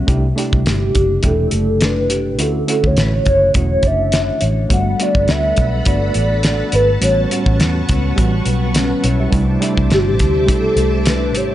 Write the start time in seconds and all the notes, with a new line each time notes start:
Already playing: G3 B3 C#4 F#4 G4
0.07 C2 C3 A3 D4 E4 G4, kick, closed hi-hat
0.36 A3 D4 E4 G4, closed hi-hat
0.53 C2, kick
0.66 G1 G4, snare, closed hi-hat
0.94 F#1 D4, kick, closed hi-hat
1.22 E1 A3 D4 E4 G4 A4, kick, closed hi-hat
1.51 F#1 A3, closed hi-hat
1.81 D4 B4, snare, closed hi-hat
2.09 G4, closed hi-hat
2.38 D2 D3 A3 C#4 E4 F#4 A4, closed hi-hat
2.67 A3 C#4 E4 F#4, closed hi-hat
2.84 D2 C#5, kick
2.96 A1 B4, snare, closed hi-hat
3.13 C#5
3.26 F#1 F#4 C#5, kick, closed hi-hat
3.54 E1 A3 C#4 E4 F#4 C#5, kick, closed hi-hat
3.59 C#5
3.83 F#1 D4, kick, closed hi-hat
3.87 E5
4.12 F#4, snare, closed hi-hat
4.41 A1 C#5, closed hi-hat
4.69 G1 G3 A3 B3 D4 F#4 A4 F#5 A5 B5, kick, closed hi-hat
4.73 F#5
4.98 A3 B3 D4 F#4, closed hi-hat
5.02 D5
5.15 G1, kick
5.28 D2 B4 E5, snare, closed hi-hat
5.57 B1 F#4, kick, closed hi-hat
5.85 G1 A3 B3 D4 F#4 B4 D5, kick, closed hi-hat
6.14 A1 D4, closed hi-hat
6.43 F#4 D5, snare, closed hi-hat
6.72 G#1 B4, closed hi-hat
7.01 A1 A2 G3 B3 C#4 F#4 B4 C#5 F#5 C#6, closed hi-hat
7.30 G3 B3 C#4 F#4, closed hi-hat
7.46 A1, kick
7.59 E2 F#4, snare, closed hi-hat
7.89 C#2 C#4, kick, snare, closed hi-hat
8.16 A1 G3 B3 C#4 F#4, kick, closed hi-hat
8.45 B1 G3, closed hi-hat
8.74 C#4, snare, closed hi-hat
8.91 B4
9.04 B1 E4 C#5, closed hi-hat
9.20 F#4 G4 E5
9.31 C2 C3 G3 A3 D4 E4 C5 E5 A5 D6, kick, closed hi-hat
9.61 G3 A3 D4 E4, closed hi-hat
9.77 C2, kick
9.90 G1 G4, snare, closed hi-hat
9.99 F#4
10.08 G4
10.19 D2 D4, kick, snare, closed hi-hat
10.46 B1 G3 A3 D4 E4 G4, kick, closed hi-hat
10.51 A4
10.76 C2 A3, closed hi-hat
11.06 D4 B4, snare, closed hi-hat
11.34 G#1 G4 C#5, closed hi-hat